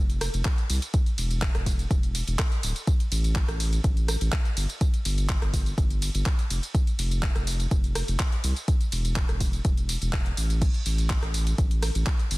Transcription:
Already playing: sub bass F1
0.10 closed hi-hat, tambourine
0.21 cross-stick, open hi-hat, ride, tambourine
0.34 sub bass F1, closed hi-hat, tambourine
0.45 kick, clap, closed hi-hat, ride, tambourine
0.58 closed hi-hat, tambourine
0.70 sub bass C2, open hi-hat, ride, tambourine
0.82 closed hi-hat, tambourine
0.94 kick, closed hi-hat, ride, tambourine
1.06 closed hi-hat, tambourine
1.18 sub bass E1, open hi-hat, ride, tambourine
1.31 closed hi-hat, tambourine
1.42 kick, clap, closed hi-hat, ride, tambourine
1.55 sub bass E1, cross-stick, closed hi-hat, tambourine
1.66 kick, open hi-hat, ride, tambourine
1.79 closed hi-hat, tambourine
1.91 sub bass E1, kick, closed hi-hat, ride, tambourine
2.03 closed hi-hat, tambourine
2.15 open hi-hat, ride, tambourine
2.27 sub bass E1, closed hi-hat, tambourine
2.39 kick, cross-stick, clap, closed hi-hat, tambourine
2.52 closed hi-hat, tambourine
2.63 sub bass D1, open hi-hat, ride, tambourine
2.76 closed hi-hat, tambourine
2.87 kick, closed hi-hat, ride, tambourine
3.00 closed hi-hat, tambourine
3.11 sub bass A1, open hi-hat, ride, tambourine
3.24 closed hi-hat, tambourine
3.36 kick, clap, closed hi-hat, ride, tambourine
3.48 sub bass A1, cross-stick, closed hi-hat, tambourine
3.60 open hi-hat, ride, tambourine
3.73 closed hi-hat, tambourine
3.84 sub bass A1, kick, closed hi-hat, ride, tambourine
3.97 closed hi-hat, tambourine
4.08 cross-stick, open hi-hat, ride, tambourine
4.21 sub bass A1, closed hi-hat, tambourine
4.32 kick, clap, closed hi-hat, ride, tambourine
4.45 closed hi-hat, tambourine
4.57 sub bass G1, open hi-hat, ride, tambourine
4.69 closed hi-hat, tambourine
4.81 kick, closed hi-hat, ride, tambourine
4.94 closed hi-hat, tambourine
5.05 sub bass G1, open hi-hat, ride, tambourine
5.18 closed hi-hat, tambourine
5.29 kick, clap, closed hi-hat, tambourine
5.42 sub bass G1, cross-stick, closed hi-hat, tambourine
5.54 kick, open hi-hat, ride, tambourine
5.66 closed hi-hat, tambourine
5.78 sub bass G1, kick, closed hi-hat, ride, tambourine
5.90 closed hi-hat, tambourine
6.02 open hi-hat, ride, tambourine
6.14 sub bass G1, closed hi-hat, tambourine
6.26 kick, clap, closed hi-hat, ride, tambourine
6.39 closed hi-hat, tambourine
6.50 sub bass F1, open hi-hat, ride, tambourine
6.63 closed hi-hat, tambourine
6.75 kick, closed hi-hat, ride, tambourine
6.87 closed hi-hat, tambourine
6.98 sub bass F1, open hi-hat, ride, tambourine
7.11 closed hi-hat, tambourine
7.23 kick, clap, closed hi-hat, ride, tambourine
7.35 sub bass F1, cross-stick, closed hi-hat, tambourine
7.47 open hi-hat, ride, tambourine
7.60 closed hi-hat, tambourine
7.71 sub bass F1, kick, closed hi-hat, ride, tambourine
7.84 closed hi-hat, tambourine
7.95 cross-stick, open hi-hat, ride, tambourine
8.08 sub bass F1, closed hi-hat, tambourine
8.19 kick, clap, closed hi-hat, tambourine
8.32 closed hi-hat, tambourine
8.44 sub bass C2, open hi-hat, ride, tambourine
8.56 closed hi-hat, tambourine
8.68 kick, closed hi-hat, ride, tambourine
8.81 closed hi-hat, tambourine
8.92 sub bass E1, open hi-hat, ride, tambourine
9.05 closed hi-hat, tambourine
9.16 kick, clap, closed hi-hat, ride, tambourine
9.29 sub bass E1, cross-stick, closed hi-hat, tambourine
9.40 kick, open hi-hat, ride, tambourine
9.53 closed hi-hat, tambourine
9.65 sub bass E1, kick, closed hi-hat, ride, tambourine
9.77 closed hi-hat, tambourine
9.89 open hi-hat, ride, tambourine
10.02 sub bass E1, closed hi-hat, tambourine
10.13 kick, clap, closed hi-hat, ride, tambourine
10.26 closed hi-hat, tambourine
10.37 sub bass A1, open hi-hat, ride, tambourine
10.50 closed hi-hat, tambourine
10.62 kick, closed hi-hat, ride, tambourine, crash
10.74 closed hi-hat, tambourine
10.86 sub bass A1, open hi-hat, ride, tambourine
10.98 closed hi-hat, tambourine
11.10 kick, clap, closed hi-hat, tambourine
11.22 sub bass A1, cross-stick, closed hi-hat, tambourine
11.34 open hi-hat, ride, tambourine
11.47 closed hi-hat, tambourine
11.58 sub bass A1, kick, closed hi-hat, ride, tambourine
11.71 closed hi-hat, tambourine
11.82 cross-stick, open hi-hat, ride, tambourine
11.95 sub bass A1, closed hi-hat, tambourine
12.06 kick, clap, closed hi-hat, ride, tambourine
12.19 closed hi-hat, tambourine
12.31 sub bass G1, open hi-hat, ride, tambourine

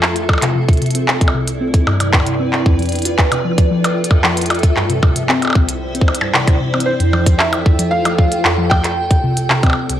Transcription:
Already playing: ambient pad F4 A4 E5
0.03 clap
0.16 synth pluck F4, closed hi-hat
0.29 kick, percussion blips
0.33 percussion blips
0.38 percussion blips
0.42 synth pluck C3, clap, closed hi-hat
0.55 synth pluck C3
0.69 kick, closed hi-hat
0.73 closed hi-hat
0.77 ambient pad E4, closed hi-hat
0.82 synth pluck C3, closed hi-hat
0.86 closed hi-hat
0.91 closed hi-hat
0.95 synth pluck C4, closed hi-hat
1.04 ambient pad D5
1.08 clap
1.21 synth pluck C2, ambient pad G5, kick, closed hi-hat
1.28 ambient pad B4, percussion blips
1.34 synth pluck C3
1.48 closed hi-hat
1.61 synth pluck C4
1.74 kick, closed hi-hat
1.87 synth pluck G2, percussion blips
2.00 synth pluck C3, closed hi-hat, percussion blips
2.13 kick, clap
2.20 percussion blips
2.26 synth pluck C3, closed hi-hat
2.40 synth pluck C4
2.53 clap
2.66 synth pluck F2, kick
2.79 synth pluck F3, closed hi-hat
2.82 closed hi-hat
2.86 closed hi-hat
2.89 closed hi-hat
2.92 ambient pad F4, closed hi-hat
2.95 closed hi-hat
2.99 closed hi-hat
3.02 closed hi-hat
3.05 synth pluck F4, closed hi-hat
3.18 kick, clap
3.24 ambient pad A4
3.32 synth pluck C3, closed hi-hat, percussion blips
3.45 synth pluck F3, ambient pad E5
3.58 kick, closed hi-hat
3.71 synth pluck F3
3.84 synth pluck F4, closed hi-hat, percussion blips
4.04 closed hi-hat
4.11 synth pluck F2, kick, percussion blips
4.24 synth pluck F3, clap
4.37 closed hi-hat
4.41 closed hi-hat
4.46 closed hi-hat
4.50 synth pluck F4, closed hi-hat, percussion blips
4.55 closed hi-hat
4.59 closed hi-hat
4.63 kick, closed hi-hat
4.76 synth pluck G2, clap
4.90 synth pluck C3, closed hi-hat
4.94 ambient pad C5
5.01 ambient pad E4, kick, percussion blips
5.16 synth pluck C3, closed hi-hat
5.29 synth pluck C4, clap
5.35 ambient pad D5
5.42 closed hi-hat, percussion blips
5.45 percussion blips
5.47 percussion blips
5.50 percussion blips
5.53 synth pluck C2, kick, percussion blips
5.68 synth pluck C3, closed hi-hat
5.95 synth pluck C4, closed hi-hat
6.01 kick
6.08 percussion blips
6.15 closed hi-hat
6.21 synth pluck G2, percussion blips
6.34 synth pluck C3, clap
6.47 kick, closed hi-hat, percussion blips
6.61 synth pluck C3
6.74 synth pluck C4, percussion blips
6.80 closed hi-hat
6.86 felt piano C5
6.96 ambient pad A4
7.00 synth pluck F2, closed hi-hat
7.13 synth pluck F3, ambient pad F4, percussion blips
7.26 kick, closed hi-hat
7.38 synth pluck F4, felt piano E5, clap
7.53 closed hi-hat, percussion blips
7.66 synth pluck F2, kick
7.79 synth pluck F3, closed hi-hat
7.91 felt piano F5
8.05 synth pluck F3, closed hi-hat, percussion blips
8.18 synth pluck F4, kick
8.32 closed hi-hat
8.45 synth pluck F2, clap
8.58 synth pluck F3
8.70 felt piano G5, kick, percussion blips
8.84 synth pluck F4, clap, closed hi-hat
9.11 synth pluck C2, kick, closed hi-hat
9.24 synth pluck C3
9.30 ambient pad E4
9.37 closed hi-hat
9.50 synth pluck C3, ambient pad C5, clap
9.61 synth pluck C4, ambient pad D5, kick, closed hi-hat, percussion blips
9.67 percussion blips
9.70 percussion blips
9.73 percussion blips
9.90 synth pluck C2, closed hi-hat

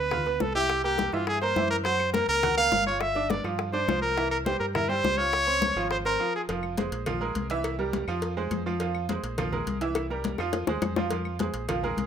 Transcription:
Already playing: fingered electric bass D2, trumpet B4
0.11 upright piano F4 F5 F6, high bongo, high conga, low conga
0.26 upright piano B3 B4 B5, high bongo, high conga
0.40 fingered electric bass C2, trumpet A4, high bongo, low bongo, high conga
0.55 upright piano E4 E5 E6, trumpet G4, high conga
0.70 high bongo, high conga
0.84 upright piano A#3 A#4 A#5, trumpet G4, high bongo, high conga
0.98 high bongo, high conga
1.13 fingered electric bass G2, upright piano E3 E4 E5, trumpet F4, high bongo, high conga
1.27 trumpet G#4, high bongo, high conga
1.42 upright piano A#3 A#4 A#5, trumpet C5, high bongo, high conga
1.56 fingered electric bass F#2, upright piano E3 E4 E5, high bongo, low bongo, high conga
1.71 trumpet A#4
1.84 upright piano F#3 F#4 F#5, trumpet C5, high bongo, high conga
2.00 high bongo, high conga, claves
2.13 upright piano A#3 A#4 A#5, trumpet A#4, high bongo, high conga
2.28 fingered electric bass C#2, trumpet A#4, high bongo, high conga
2.43 upright piano F#4 F#5 F#6, high bongo, high conga, low conga, claves
2.57 upright piano A#3 A#4 A#5, trumpet F5, high bongo, high conga
2.72 fingered electric bass G1, high bongo, low bongo, high conga
2.86 upright piano F4 F5 F6, trumpet C#5, high conga
3.01 trumpet E5, high bongo, high conga, claves
3.15 upright piano D4 D5 D6, high bongo, high conga
3.30 trumpet D5, high bongo, high conga
3.44 fingered electric bass G2, upright piano F3 F4 F5, high bongo, high conga, claves
3.59 high bongo, high conga
3.73 upright piano D4 D5 D6, trumpet C5, high bongo, high conga
3.88 fingered electric bass C2, upright piano F3 F4 F5, high bongo, low bongo, high conga, claves
4.02 trumpet A#4
4.17 upright piano E3 E4 E5, high bongo, high conga
4.31 trumpet A#4, high bongo, high conga, claves
4.45 upright piano G3 G4 G5, trumpet C5, high bongo, high conga
4.60 fingered electric bass G2, trumpet A#4, high bongo, high conga
4.75 upright piano E4 E5 E6, trumpet A#4, high bongo, high conga, low conga, claves
4.89 upright piano G3 G4 G5, trumpet C5, high bongo, high conga
5.04 fingered electric bass C#2, high bongo, low bongo, high conga
5.18 upright piano F4 F5 F6, trumpet C#5, high conga
5.33 high bongo, high conga, claves
5.47 upright piano C4 C5 C6, high bongo, high conga
5.62 high bongo, high conga
5.76 fingered electric bass G#1, upright piano F3 F4 F5, high bongo, high conga, claves
5.91 trumpet C5, high bongo, high conga
6.05 upright piano C4 C5 C6, trumpet A#4, high bongo, high conga
6.20 upright piano F3 F4 F5
6.36 trumpet G#4
6.48 fingered electric bass F1, upright piano F3 F4 F5, cowbell, high conga
6.63 high conga, claves
6.77 upright piano G#3 G#4 C5, cowbell, high conga
6.92 fingered electric bass A#1, cowbell, high conga
7.06 upright piano F3 F4 F5, cowbell, high conga, low conga, claves
7.21 upright piano G#3 G#4 A#4, high conga
7.35 fingered electric bass C2, cowbell, high conga
7.50 upright piano E3 E4 E5, cowbell, high conga
7.64 cowbell, high conga, claves
7.79 upright piano G3 G4 A#4, high conga
7.93 cowbell, high conga
8.07 fingered electric bass F2, upright piano F3 F4 F5, high conga, claves
8.22 cowbell, high conga
8.37 upright piano G#3 G#4 C5, high conga
8.51 fingered electric bass F2, cowbell, high conga, claves
8.66 upright piano F3 F4 F5
8.80 upright piano F3 F4 F5, cowbell
8.95 high conga, claves
9.09 upright piano G#3 G#4 C5, cowbell, high conga
9.23 fingered electric bass A#1, cowbell
9.38 upright piano F3 F4 F5, cowbell, high conga, low conga, claves
9.52 upright piano G#3 G#4 A#4, high conga, low conga
9.67 fingered electric bass C2, cowbell, high conga
9.81 upright piano E3 E4 E5, cowbell, high conga
9.95 cowbell, high bongo, high conga, claves
10.10 upright piano G3 G4 A#4, high conga
10.24 cowbell, high conga
10.38 fingered electric bass F2, upright piano F3 F4 F5, high bongo, high conga, claves
10.53 cowbell, low bongo, high conga
10.67 fingered electric bass D#2, upright piano G#3 G#4 C5, low bongo, high conga
10.82 fingered electric bass F2, cowbell, low bongo, high conga, claves
10.96 upright piano F3 F4 F5, low bongo, high conga
11.11 upright piano F3 F4 F5, cowbell, high conga
11.25 high conga, claves
11.39 upright piano G#3 G#4 C5, cowbell, high conga
11.54 fingered electric bass A#1, cowbell, high conga
11.68 upright piano F3 F4 F5, cowbell, high conga, low conga, claves
11.83 upright piano G#3 G#4 A#4, high conga, low conga
11.97 fingered electric bass C2, cowbell, high conga

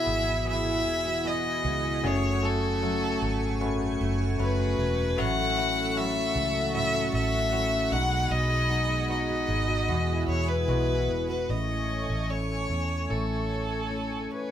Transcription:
Already playing: tine electric piano B2 B3 E4 F#4 G#4 B4, steel-string acoustic guitar E3 F#4 G#4, analog synth pad E4 G#4 F#5 B5, violin E5
0.07 fingered electric bass G#1, steel-string acoustic guitar B3
0.27 steel-string acoustic guitar G#4
0.45 steel-string acoustic guitar E3, tine electric piano B3 E4 F#4 G#4
0.49 violin E5
0.66 steel-string acoustic guitar F#4
0.86 fingered electric bass E1, steel-string acoustic guitar B3
1.06 steel-string acoustic guitar F#4
1.24 tine electric piano B3 E4 F#4 G#4, steel-string acoustic guitar B3, violin D#5
1.45 steel-string acoustic guitar G#4
1.65 fingered electric bass C#2, steel-string acoustic guitar B3
1.85 steel-string acoustic guitar G#4
2.04 fingered electric bass F#1, steel-string acoustic guitar F#2, tine electric piano C#3 A3 C#4 F#4 G#4, analog synth pad A3 G#5 C#6, violin C#5
2.23 steel-string acoustic guitar F#4
2.42 tine electric piano A3 C#4 F#4 A4, steel-string acoustic guitar A3, violin A4
2.62 steel-string acoustic guitar F#4
2.82 steel-string acoustic guitar F#3, tine electric piano A3 C#4 F#4 A4
3.22 fingered electric bass G#1, steel-string acoustic guitar A3
3.41 steel-string acoustic guitar G#4
3.60 steel-string acoustic guitar F#2, tine electric piano A3 C#4 F#4 B4
3.81 steel-string acoustic guitar F#4
4.01 fingered electric bass F#1, steel-string acoustic guitar A3
4.20 steel-string acoustic guitar F#4
4.38 fingered electric bass F#1, steel-string acoustic guitar F#3, tine electric piano A3 C#4 F#4 B4, violin B4
4.59 steel-string acoustic guitar G#4
4.79 fingered electric bass E1, steel-string acoustic guitar A3
4.98 steel-string acoustic guitar G#4
5.17 fingered electric bass A1, tine electric piano A2 E3 A3 C#4 E4 F#4, steel-string acoustic guitar A2, analog synth pad A4 E5 F#5 C#6, violin F#5
5.38 steel-string acoustic guitar C#4
5.57 tine electric piano A3 C#4 E4 F#4, steel-string acoustic guitar A3
5.77 steel-string acoustic guitar C#4
5.96 steel-string acoustic guitar F#3, tine electric piano A3 C#4 E4 F#4, violin E5
6.16 steel-string acoustic guitar F#4
6.35 fingered electric bass C#2, steel-string acoustic guitar A3
6.55 steel-string acoustic guitar F#4
6.74 steel-string acoustic guitar A2, tine electric piano A3 C#4 E4 F#4, violin E5
6.94 steel-string acoustic guitar C#4
7.13 fingered electric bass A1, steel-string acoustic guitar A3, violin E5
7.33 steel-string acoustic guitar C#4
7.52 steel-string acoustic guitar F#3, tine electric piano A3 C#4 E4 F#4
7.72 steel-string acoustic guitar F#4
7.91 fingered electric bass B1, steel-string acoustic guitar B2, tine electric piano B2 G#3 B3 D#4 F#4, analog synth pad G#4 D#5 B5, violin F#5
8.11 steel-string acoustic guitar F#4
8.30 fingered electric bass B1, steel-string acoustic guitar B2, violin D#5
8.50 steel-string acoustic guitar D#4
8.69 tine electric piano G#3 B3 D#4 G#4, steel-string acoustic guitar B3
8.89 steel-string acoustic guitar D#4
9.09 steel-string acoustic guitar G#3, tine electric piano G#3 B3 D#4 F#4, violin D#5
9.29 steel-string acoustic guitar F#4
9.48 fingered electric bass G#1, steel-string acoustic guitar B3
9.68 steel-string acoustic guitar F#4
9.88 fingered electric bass E2, tine electric piano B2 G#3 B3 E4 F#4, steel-string acoustic guitar E3, analog synth pad E4 G#4
10.08 steel-string acoustic guitar E4
10.28 fingered electric bass E2, steel-string acoustic guitar B3, violin C#5
10.48 steel-string acoustic guitar E4, violin B4
10.68 fingered electric bass B1, steel-string acoustic guitar G#3, tine electric piano G#3 B3 E4 F#4
10.88 steel-string acoustic guitar F#4
11.08 fingered electric bass E1, steel-string acoustic guitar B3
11.28 steel-string acoustic guitar F#4, violin B4
11.48 fingered electric bass A1, tine electric piano A2 E3 A3 C#4 E4 G#4, analog synth pad A3 C#5 G#5 C#6, violin D#5
12.10 fingered electric bass A1
12.29 tine electric piano A3 C#4 E4 A4, violin C#5
12.70 fingered electric bass E2
13.10 fingered electric bass A1, tine electric piano A3 C#4 E4 A4, violin A4
13.90 tine electric piano A3 C#4 E4 A4
14.31 violin B4

